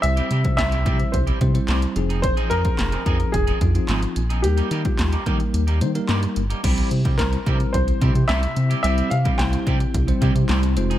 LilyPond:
<<
  \new Staff \with { instrumentName = "Grand piano" } { \time 4/4 \key c \phrygian \tempo 4 = 109 e''4 e''4 c''4. r8 | c''8 bes'4. aes'2 | g'2. r4 | r4 bes'4 c''4 e''4 |
e''8 f''8 g''2~ g''8 r8 | }
  \new Staff \with { instrumentName = "Ambient pad" } { \time 4/4 \key c \phrygian << { r1 | r1 | r1 | <c e' g'>1~ |
<c e' g'>2.~ <c e' g'>8 <f ees' aes'>8 | } \\ { r1 | r1 | r1 | c'1~ |
c'1 | } >> }
  \new Staff \with { instrumentName = "Tine electric piano" } { \time 4/4 \key c \phrygian <g c' e' c''>8 r16 <g c' e' c''>8 r16 <g c' e' c''>8. r16 <g c' e' c''>16 <g c' e' c''>8. <f c' ees' aes'>8~ | <f c' ees' aes'>8 r16 <f c' ees' aes'>8 r16 <f c' ees' aes'>8. r16 <f c' ees' f'>16 <f c' ees' f'>8. r8 | <g bes ees' bes'>8 r16 <g bes ees' f'>8 r16 <g bes ees' bes'>8. r16 <g bes ees' c''>16 <g bes ees' bes'>8. r8 | <g c' e' c''>8. r16 <g c' e' c''>16 r16 <g c' e' c''>4~ <g c' e' c''>16 r4 r16 |
<g c' e' c''>8 r16 <g c' e' c''>4 r8 <g c' e' c''>4~ <g c' e' c''>16 <aes ees' f' c''>8 | }
  \new Staff \with { instrumentName = "Clean electric guitar" } { \time 4/4 \key c \phrygian r16 <g c' e' g'>16 <g c' e' g'>16 r8 <g c' e' g'>16 <g c' e' g'>16 r8 <g c' e' g'>16 r8 <g c' e' g'>16 r8 <f c' ees' aes'>16 | r16 <f c' ees' aes'>16 <f c' ees' aes'>16 r8 <f c' ees' aes'>16 <f c' ees' aes'>16 r8 <f c' ees' aes'>16 r8 <f c' ees' aes'>16 r8 <f c' ees' aes'>16 | r16 <g bes ees' g'>16 <g bes ees' g'>16 r8 <g bes ees' g'>16 <g bes ees' g'>16 r8 <g bes ees' g'>16 r8 <g bes ees' g'>16 r8 <g bes ees' g'>16 | <g c' e' g'>8 r16 <g c' e' g'>16 r8 <g c' e' g'>16 r8. <g c' e' g'>16 r16 <g c' e' g'>16 r8 <g c' e' g'>16 |
<g c' e' g'>8 r16 <g c' e' g'>16 r8 <g c' e' g'>16 r8. <g c' e' g'>16 r16 <g c' e' g'>16 r8 <f c' ees' aes'>16 | }
  \new Staff \with { instrumentName = "Analog synth bass" } { \clef bass \time 4/4 \key c \phrygian c,8 c8 c,8 c8 c,8 c8 c,8 f,,8~ | f,,8 f,8 f,,8 f,8 f,,8 f,8 aes,,8 bes,,8 | ees,8 ees8 ees,8 ees8 ees,8 ees8 g,8 g,,8 | c,8 c8 c,8 c8 c,8 c16 c16 c,8 c8 |
c,8 c8 c,8 c8 c,8 c16 c16 c,8 f,,8 | }
  \new DrumStaff \with { instrumentName = "Drums" } \drummode { \time 4/4 hh16 hh16 hh16 <hh bd>16 <hc hh sn>16 hh16 <hh bd>16 hh16 <hh bd>16 hh16 <hh bd>16 hh16 <hc hh sn>16 hh16 hh16 hh16 | <hh bd>16 hh16 hh16 <hh bd>16 <hc hh sn>16 hh16 <hh bd>16 hh16 <hh bd>16 hh16 <hh bd>16 hh16 <hc hh sn>16 hh16 hh16 hh16 | hh16 hh16 hh16 <hh bd>16 <hc hh sn>16 hh16 <hh bd>16 hh16 hh16 hh16 hh16 hh16 <hc hh sn>16 hh16 hh16 hh16 | <cymc hh bd>16 hh16 hh16 <hh bd>16 <hc hh sn>16 hh16 <hh bd>16 hh16 <hh bd>16 hh16 <hh bd>16 hh16 <hc hh sn>16 hh16 hh16 hh16 |
hh16 hh16 hh16 <hh bd>16 <hc hh sn>16 hh16 <hh bd>16 hh16 <hh bd>16 hh16 <hh bd>16 hh16 <hc hh sn>16 hh16 hh16 hh16 | }
>>